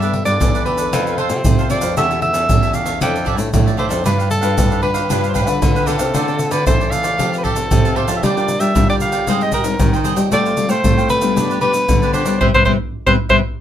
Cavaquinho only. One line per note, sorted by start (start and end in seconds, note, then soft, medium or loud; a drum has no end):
0.02 0.13 A4 soft
0.02 0.13 B4 soft
0.02 0.13 D5 soft
0.14 muted cavaquinho stroke soft
0.25 0.52 A4 soft
0.25 0.52 B4 soft
0.25 0.51 D5 soft
0.54 0.65 A4 soft
0.54 0.65 B4 soft
0.54 0.66 D5 soft
0.65 0.78 G4 soft
0.65 0.78 A4 soft
0.65 0.77 B4 soft
0.65 0.76 D5 soft
0.77 0.91 A4 soft
0.77 0.91 B4 soft
0.77 0.90 D5 medium
0.93 1.05 F4 medium
0.93 1.05 A4 medium
0.93 1.05 C5 medium
0.93 1.05 F5 medium
1.07 1.17 A4 soft
1.07 1.18 C5 soft
1.07 1.18 F5 soft
1.18 1.29 F4 medium
1.18 1.29 A4 medium
1.18 1.29 C5 medium
1.18 1.30 F5 medium
1.30 muted cavaquinho stroke soft
1.59 1.69 A4 soft
1.59 1.70 C5 soft
1.59 1.70 F5 soft
1.70 1.82 F4 medium
1.70 1.82 A4 medium
1.70 1.81 C5 medium
1.70 1.80 F5 medium
1.82 1.96 A4 soft
1.82 1.95 C5 soft
1.82 1.95 F5 soft
1.96 2.09 G4 medium
1.96 2.09 A4 medium
1.96 2.09 C#5 medium
1.96 2.09 E5 medium
2.10 2.20 A4 soft
2.10 2.21 C#5 soft
2.10 2.21 E5 soft
2.21 muted cavaquinho stroke soft
2.33 2.61 A4 soft
2.33 2.60 C#5 soft
2.33 2.60 E5 soft
2.62 2.73 A4 soft
2.62 2.74 C#5 soft
2.62 2.74 E5 soft
2.73 2.86 G4 soft
2.73 2.86 A4 soft
2.73 2.85 C#5 soft
2.73 2.84 E5 soft
2.85 3.00 A4 soft
2.85 2.99 C#5 soft
2.85 2.99 E5 medium
3.01 3.13 F4 medium
3.01 3.13 A4 medium
3.01 3.14 D5 medium
3.01 3.14 E5 medium
3.15 3.25 A4 soft
3.15 3.25 D5 soft
3.15 3.26 E5 soft
3.25 3.36 F4 medium
3.25 3.36 A4 medium
3.25 3.37 D5 medium
3.25 3.37 E5 medium
3.37 muted cavaquinho stroke soft
3.66 3.77 A4 soft
3.66 3.77 D5 soft
3.66 3.78 E5 soft
3.77 3.90 F4 medium
3.77 3.90 A4 medium
3.77 3.89 D5 medium
3.77 3.88 E5 medium
3.89 4.04 A4 soft
3.89 4.03 D5 soft
3.89 4.03 E5 medium
4.04 4.17 D4 medium
4.04 4.17 G4 medium
4.04 4.18 B4 medium
4.04 4.17 F5 medium
4.18 4.29 G4 soft
4.18 4.29 B4 soft
4.18 4.30 F5 soft
4.30 muted cavaquinho stroke soft
4.41 4.69 G4 soft
4.41 4.68 B4 medium
4.41 4.68 F5 medium
4.70 4.81 G4 soft
4.70 4.82 B4 soft
4.70 4.82 F5 soft
4.82 4.95 D4 soft
4.82 4.95 G4 soft
4.82 4.94 B4 soft
4.82 4.93 F5 soft
4.94 5.09 G4 soft
4.94 5.08 B4 soft
4.94 5.08 F5 medium
5.09 5.22 D4 medium
5.09 5.22 G4 medium
5.09 5.22 B4 medium
5.09 5.22 F5 medium
5.23 5.34 G4 soft
5.23 5.34 B4 soft
5.23 5.35 F5 soft
5.34 5.46 D4 medium
5.34 5.46 G4 medium
5.34 5.46 B4 medium
5.34 5.47 F5 medium
5.47 muted cavaquinho stroke soft
5.75 5.85 G4 soft
5.75 5.86 B4 soft
5.75 5.86 F5 soft
5.86 5.99 D4 medium
5.86 5.99 G4 medium
5.86 5.98 B4 medium
5.86 5.97 F5 medium
5.98 6.13 G4 soft
5.98 6.12 B4 soft
5.98 6.12 F5 soft
6.14 6.26 F4 medium
6.14 6.26 A4 medium
6.14 6.27 C5 medium
6.14 6.26 D5 medium
6.28 6.38 A4 soft
6.28 6.39 C5 soft
6.28 6.39 D5 soft
6.39 muted cavaquinho stroke soft
6.51 6.78 A4 soft
6.51 6.78 C5 medium
6.51 6.77 D5 medium
6.80 6.91 A4 soft
6.80 6.91 C5 soft
6.80 6.92 D5 soft
6.91 7.04 F4 soft
6.91 7.04 A4 soft
6.91 7.03 C5 soft
6.91 7.02 D5 soft
7.03 7.17 A4 soft
7.03 7.17 C5 soft
7.03 7.16 D5 medium
7.18 7.31 G4 medium
7.18 7.30 A4 medium
7.18 7.31 F5 medium
7.18 7.31 A5 medium
7.32 7.43 G4 soft
7.32 7.44 F5 soft
7.32 7.44 A5 soft
7.44 7.55 G4 medium
7.44 7.55 A4 medium
7.44 7.56 F5 medium
7.44 7.56 A5 medium
7.56 muted cavaquinho stroke soft
7.85 7.96 G4 soft
7.85 7.96 F5 soft
7.85 7.97 A5 soft
7.96 8.09 G4 medium
7.96 8.09 A4 medium
7.96 8.09 F5 medium
7.96 8.08 A5 medium
8.09 8.22 G4 soft
8.09 8.22 F5 soft
8.09 8.21 A5 soft
8.24 8.35 F4 medium
8.24 8.36 A#4 medium
8.24 8.36 D5 medium
8.24 8.36 G5 medium
8.37 8.48 A#4 soft
8.37 8.48 D5 soft
8.37 8.49 G5 soft
8.49 muted cavaquinho stroke soft
8.60 8.87 A#4 soft
8.60 8.87 D5 soft
8.60 8.86 G5 soft
8.90 9.00 A#4 soft
8.90 9.01 D5 soft
8.90 9.01 G5 soft
9.01 9.13 F4 soft
9.01 9.13 A#4 soft
9.01 9.12 D5 soft
9.01 9.11 G5 soft
9.13 9.27 A#4 soft
9.13 9.26 D5 medium
9.13 9.25 G5 medium
9.28 9.40 G#4 medium
9.28 9.40 C5 medium
9.28 9.41 D#5 medium
9.28 9.41 G5 medium
9.42 9.52 C5 soft
9.42 9.52 D#5 soft
9.42 9.53 G5 soft
9.52 9.63 G#4 medium
9.52 9.63 C5 medium
9.52 9.64 D#5 medium
9.52 9.64 G5 medium
9.64 muted cavaquinho stroke soft
9.93 10.04 C5 soft
9.93 10.04 D#5 soft
9.93 10.05 G5 soft
10.04 10.17 G#4 medium
10.04 10.17 C5 medium
10.04 10.16 D#5 medium
10.04 10.15 G5 medium
10.16 10.30 C5 soft
10.16 10.30 D#5 soft
10.16 10.30 G5 soft
10.32 10.44 A4 medium
10.32 10.44 C5 medium
10.32 10.44 F5 medium
10.32 10.44 G5 medium
10.45 10.56 C5 soft
10.45 10.56 F5 soft
10.45 10.56 G5 soft
10.57 muted cavaquinho stroke soft
10.69 10.96 C5 soft
10.69 10.95 F5 soft
10.69 10.95 G5 medium
10.98 11.08 C5 soft
10.98 11.09 F5 soft
10.98 11.09 G5 soft
11.08 11.21 A4 soft
11.08 11.21 C5 soft
11.08 11.20 F5 soft
11.08 11.19 G5 soft
11.20 11.35 C5 soft
11.20 11.34 F5 soft
11.20 11.34 G5 soft
11.36 11.48 D4 medium
11.36 11.48 G4 medium
11.36 11.49 B4 medium
11.36 11.48 D5 medium
11.50 11.61 G4 soft
11.50 11.61 B4 soft
11.50 11.61 D5 soft
11.61 11.72 D4 medium
11.61 11.72 G4 medium
11.61 11.73 B4 medium
11.61 11.73 D5 medium
12.02 12.13 G4 soft
12.02 12.13 B4 soft
12.02 12.14 D5 soft
12.13 12.26 D4 medium
12.13 12.26 G4 medium
12.13 12.25 B4 medium
12.13 12.24 D5 medium
12.25 12.39 G4 soft
12.25 12.39 B4 soft
12.25 12.38 D5 soft
12.41 12.49 B4 medium
12.41 12.49 C5 medium
12.41 12.49 E5 medium
12.54 12.63 B4 medium
12.54 12.63 C5 medium
12.54 12.63 E5 medium
12.65 12.74 B4 medium
12.65 12.75 C5 medium
12.65 12.74 E5 medium
13.07 13.15 B4 medium
13.07 13.15 C5 medium
13.07 13.15 E5 medium
13.29 13.39 B4 medium
13.29 13.39 C5 medium
13.29 13.39 E5 medium